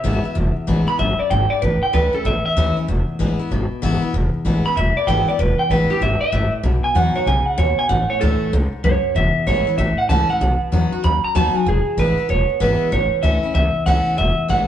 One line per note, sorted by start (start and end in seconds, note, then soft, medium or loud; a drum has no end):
0.00 0.34 B2 medium
0.00 0.24 E3 medium
0.00 0.65 E5 medium
0.04 0.20 G#1 loud
0.04 0.24 G#3 medium
0.04 0.24 B3 loud
0.04 0.22 E4 loud
0.24 0.36 B3 soft
0.24 0.35 E4 medium
0.24 muted upright bass stroke medium
0.35 0.52 E1 loud
0.35 0.96 E2 medium
0.56 muted upright bass stroke medium
0.67 0.84 A1 medium
0.67 0.87 E3 medium
0.67 0.87 G#3 medium
0.67 0.87 B3 medium
0.67 0.86 E4 medium
0.87 0.99 B3 medium
0.87 0.99 E4 medium
0.87 0.99 B5 loud
0.87 muted upright bass stroke medium
0.99 1.15 G#1 loud
0.99 1.30 F#2 medium
0.99 1.19 E5 medium
1.19 1.30 D5 medium
1.19 muted upright bass stroke medium
1.30 1.47 G#1 loud
1.30 1.61 G#2 medium
1.30 1.50 G5 medium
1.50 1.62 D5 medium
1.50 muted upright bass stroke medium
1.62 1.78 A1 loud
1.62 2.23 A2 medium
1.62 1.82 B4 medium
1.82 1.94 G5 medium
1.82 muted upright bass stroke medium
1.93 2.10 D2 medium
1.93 2.13 E3 medium
1.93 2.13 A3 medium
1.93 2.13 C#4 medium
1.93 2.12 E4 medium
1.93 2.13 B4 medium
2.13 2.25 C#4 medium
2.13 2.24 E4 medium
2.13 2.25 A4 medium
2.13 muted upright bass stroke medium
2.25 2.41 A1 loud
2.25 2.86 E2 medium
2.25 2.44 E5 medium
2.46 2.76 E5 loud
2.46 muted upright bass stroke medium
2.57 2.73 D#2 loud
2.57 2.76 E3 loud
2.57 2.76 A3 medium
2.57 2.76 C#4 loud
2.57 2.76 E4 loud
2.77 2.89 C#4 soft
2.77 2.88 E4 medium
2.77 muted upright bass stroke medium
2.88 3.04 E1 loud
2.88 3.49 E2 medium
3.08 muted upright bass stroke medium
3.19 3.35 A1 medium
3.19 3.38 E3 medium
3.19 3.39 G#3 medium
3.19 3.39 B3 medium
3.19 3.38 E4 medium
3.39 3.51 B3 medium
3.39 3.50 E4 medium
3.39 muted upright bass stroke medium
3.51 3.67 G#1 loud
3.51 4.12 B2 medium
3.71 muted upright bass stroke medium
3.82 3.98 G#1 loud
3.82 4.01 E3 loud
3.82 4.02 G#3 medium
3.82 4.02 B3 loud
3.82 4.01 E4 loud
4.02 4.14 B3 soft
4.02 4.13 E4 medium
4.13 4.29 E1 loud
4.13 4.74 E2 loud
4.34 muted upright bass stroke medium
4.45 4.61 A1 medium
4.45 4.64 E3 medium
4.45 4.64 G#3 medium
4.45 4.65 B3 medium
4.45 4.64 E4 medium
4.65 4.77 B3 medium
4.65 4.76 E4 medium
4.65 4.76 B5 loud
4.65 muted upright bass stroke medium
4.76 4.92 E1 loud
4.76 5.37 B2 medium
4.76 4.96 E5 medium
4.97 5.08 D5 loud
4.97 muted upright bass stroke medium
5.07 5.23 G#1 medium
5.07 5.27 E3 medium
5.07 5.27 G#3 loud
5.07 5.27 B3 medium
5.07 5.26 E4 loud
5.07 5.27 G5 loud
5.28 5.40 B3 medium
5.28 5.39 E4 medium
5.28 5.40 D5 medium
5.28 muted upright bass stroke medium
5.39 5.55 E1 loud
5.39 6.00 E2 medium
5.39 5.59 B4 medium
5.59 5.70 G5 medium
5.59 muted upright bass stroke medium
5.70 5.86 A1 medium
5.70 5.90 E3 medium
5.70 5.90 G#3 medium
5.70 5.90 B3 medium
5.70 5.89 E4 medium
5.70 5.90 B4 loud
5.90 6.02 B3 soft
5.90 6.01 E4 medium
5.90 6.02 G4 loud
5.90 muted upright bass stroke medium
6.01 6.17 G#1 loud
6.01 6.32 G#2 medium
6.01 6.20 E5 loud
6.21 6.52 E5 loud
6.21 muted upright bass stroke medium
6.32 6.48 G#1 medium
6.32 6.63 A2 medium
6.52 muted upright bass stroke medium
6.63 6.80 B1 loud
6.63 7.25 B2 medium
6.84 6.96 G#5 loud
6.84 muted upright bass stroke medium
6.95 7.11 E2 medium
6.95 7.15 F#3 medium
6.95 7.15 B3 medium
6.95 7.15 D#4 medium
6.95 7.14 F#4 medium
6.95 7.15 F#5 medium
7.15 7.27 D#4 soft
7.15 7.27 F#4 medium
7.15 7.27 C#5 medium
7.15 muted upright bass stroke medium
7.26 7.43 B1 loud
7.26 7.57 C#3 medium
7.26 7.46 G#5 loud
7.46 7.58 F#5 loud
7.46 muted upright bass stroke medium
7.58 7.74 D#2 medium
7.58 7.88 B2 medium
7.58 7.78 C#5 medium
7.79 7.89 G#5 loud
7.79 muted upright bass stroke medium
7.89 8.06 A1 loud
7.89 8.50 A2 medium
7.89 8.09 F#5 medium
8.10 8.21 C#5 loud
8.10 muted upright bass stroke medium
8.21 8.38 D2 medium
8.21 8.51 E3 medium
8.21 8.52 A3 loud
8.21 8.52 C#4 medium
8.21 8.52 E4 medium
8.21 8.51 A4 loud
8.42 muted upright bass stroke medium
8.53 8.69 C#2 loud
8.53 8.83 G#2 medium
8.72 muted upright bass stroke medium
8.84 9.00 C#2 loud
8.84 9.14 F#2 loud
8.84 9.15 C#5 medium
9.04 muted upright bass stroke medium
9.15 9.31 E1 loud
9.15 9.76 E2 medium
9.15 9.46 E5 medium
9.35 muted upright bass stroke medium
9.47 9.62 A1 medium
9.47 9.66 E3 medium
9.47 9.66 G#3 medium
9.47 9.67 B3 medium
9.47 9.66 E4 medium
9.47 9.77 C#5 loud
9.66 9.79 B3 medium
9.66 9.78 E4 medium
9.66 muted upright bass stroke medium
9.78 9.94 A1 loud
9.78 10.39 A2 medium
9.78 9.97 E5 medium
9.98 10.09 F#5 loud
9.98 muted upright bass stroke medium
10.09 10.25 C#2 loud
10.09 10.29 E3 medium
10.09 10.29 A3 loud
10.09 10.29 C#4 loud
10.09 10.28 E4 loud
10.09 10.29 A5 loud
10.29 10.41 C#4 medium
10.29 10.40 E4 medium
10.29 10.60 F#5 medium
10.29 muted upright bass stroke medium
10.41 10.57 B1 loud
10.41 11.01 B2 medium
10.61 muted upright bass stroke medium
10.72 10.88 E2 loud
10.72 10.91 F#3 medium
10.72 10.92 B3 medium
10.72 10.92 D#4 medium
10.72 10.91 F#4 medium
10.92 11.04 D#4 medium
10.92 11.03 F#4 medium
10.92 muted upright bass stroke medium
11.04 11.20 D#2 loud
11.04 11.64 F#2 loud
11.04 11.23 B5 medium
11.24 11.35 A#5 loud
11.24 muted upright bass stroke medium
11.35 11.51 D#2 medium
11.35 11.54 F#3 medium
11.35 11.54 B3 loud
11.35 11.55 D#4 loud
11.35 11.54 F#4 loud
11.35 11.55 A5 loud
11.54 11.67 D#4 medium
11.54 11.66 F#4 medium
11.54 11.66 G#5 loud
11.54 muted upright bass stroke medium
11.66 11.82 E1 loud
11.66 12.27 E2 medium
11.66 12.00 G#4 medium
11.86 muted upright bass stroke medium
11.97 12.13 A1 medium
11.97 12.17 E3 medium
11.97 12.17 G#3 medium
11.97 12.17 B3 medium
11.97 12.16 E4 medium
11.97 12.30 B4 loud
12.17 12.29 B3 medium
12.17 12.29 E4 medium
12.17 muted upright bass stroke medium
12.29 12.45 E1 loud
12.29 12.90 B2 medium
12.29 12.61 C#5 medium
12.49 muted upright bass stroke medium
12.60 12.76 G#1 medium
12.60 12.91 E3 loud
12.60 12.91 G#3 medium
12.60 12.91 B3 loud
12.60 12.91 E4 loud
12.60 12.92 B4 medium
12.92 13.08 A1 loud
12.92 13.53 A2 medium
12.92 13.22 C#5 medium
13.12 muted upright bass stroke medium
13.23 13.39 D2 medium
13.23 13.42 E3 medium
13.23 13.43 A3 medium
13.23 13.43 C#4 medium
13.23 13.42 E4 medium
13.23 13.54 E5 loud
13.43 13.55 C#4 medium
13.43 13.54 E4 medium
13.43 muted upright bass stroke medium
13.55 13.71 C#2 loud
13.55 14.15 E2 medium
13.55 13.86 E5 loud
13.75 muted upright bass stroke medium
13.86 14.02 C#2 loud
13.86 14.16 E3 medium
13.86 14.17 A3 loud
13.86 14.17 C#4 loud
13.86 14.17 E4 loud
13.86 14.18 F#5 loud
14.07 muted upright bass stroke medium
14.18 14.34 E1 loud
14.18 14.67 E2 medium
14.18 14.47 E5 loud
14.38 muted upright bass stroke medium
14.48 14.65 A1 medium
14.48 14.67 E3 medium
14.48 14.67 G#3 medium
14.48 14.67 B3 medium
14.48 14.67 E4 medium
14.48 14.67 F#5 loud